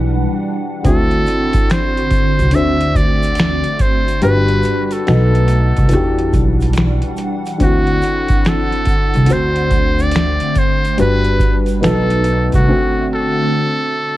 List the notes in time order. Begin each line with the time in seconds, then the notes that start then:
Already playing: B1 E3 G3 D4 F#4 G4 F#5
0.83 D2 D3 C4 E4 F#4 A4, kick, closed hi-hat, shaker
0.87 F#4
1.11 closed hi-hat
1.26 closed hi-hat, shaker
1.53 kick, closed hi-hat, shaker
1.70 C5, finger snap, snare, closed hi-hat, shaker
1.97 closed hi-hat
2.11 kick, closed hi-hat, shaker
2.39 C2, closed hi-hat, shaker
2.51 D2 D3 A3 D4 F#4 E5, closed hi-hat, shaker
2.56 C5
2.81 closed hi-hat
2.95 D2 D5, kick, closed hi-hat, shaker
3.23 closed hi-hat, shaker
3.35 closed hi-hat, shaker
3.40 finger snap, snare
3.64 closed hi-hat
3.79 C5, kick, closed hi-hat, shaker
4.08 closed hi-hat, shaker
4.22 G1 G3 D4 F#4 B4, closed hi-hat, shaker
4.48 closed hi-hat
4.63 closed hi-hat, shaker
4.85 B4
4.91 A4, closed hi-hat, shaker
5.06 B1 B2 A3 B3 D#4 A4, finger snap, snare, closed hi-hat, shaker
5.35 closed hi-hat
5.48 closed hi-hat, shaker
5.76 C2, kick, closed hi-hat, shaker
5.89 E3 G3 D4 F#4 F#5, closed hi-hat, shaker
5.93 E2 G4
6.18 closed hi-hat
6.33 B1, kick, closed hi-hat, shaker
6.61 closed hi-hat, shaker
6.73 closed hi-hat, shaker
6.78 finger snap, snare
7.02 closed hi-hat
7.17 closed hi-hat, shaker
7.46 closed hi-hat, shaker
7.58 D2 D3 C4 E4, kick, closed hi-hat, shaker
7.63 F#4
7.87 closed hi-hat
8.02 closed hi-hat, shaker
8.28 kick, closed hi-hat, shaker
8.45 A4, finger snap, snare, closed hi-hat, shaker
8.72 closed hi-hat
8.85 kick, closed hi-hat, shaker
9.14 C2, closed hi-hat, shaker
9.25 D3 A3 D4 F#4, closed hi-hat
9.30 D2 C5, shaker
9.56 closed hi-hat
9.70 D2, kick, closed hi-hat, shaker
9.99 D5, closed hi-hat, shaker
10.11 closed hi-hat, shaker
10.16 finger snap, snare
10.40 closed hi-hat
10.55 C5, kick, closed hi-hat, shaker
10.85 closed hi-hat, shaker
10.97 G1 G3 D4 F#4 B4, closed hi-hat, shaker
11.25 closed hi-hat
11.39 kick, closed hi-hat, shaker
11.66 closed hi-hat, shaker
11.81 B1 B2 A3 B3 D#4 A4, finger snap, snare, closed hi-hat, shaker
11.85 A4
12.10 closed hi-hat
12.24 closed hi-hat, shaker
12.52 C2 F#4, kick, closed hi-hat, shaker
12.66 D3 A3 C4 F#4
12.71 F#4
13.13 A4